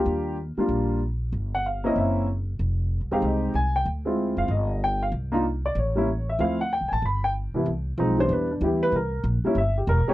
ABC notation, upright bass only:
X:1
M:4/4
L:1/8
Q:"Swing" 1/4=189
K:Eb
V:1 name="Upright bass" clef=bass
E,,3 z B,,,4 | G,,,4 ^F,,,4 | F,,,2- (3F,,, C,, E,, C,,2 C,,2 | D,,3 ^F,,, G,,,4 |
C,,4 =A,,,4 | D,,2- (3D,, C,, =A,,, G,,,3 z | C,,2 =B,,,2 =E,,2 D,,2 | C,,2 B,,, z G,,,2 =E,,, z |]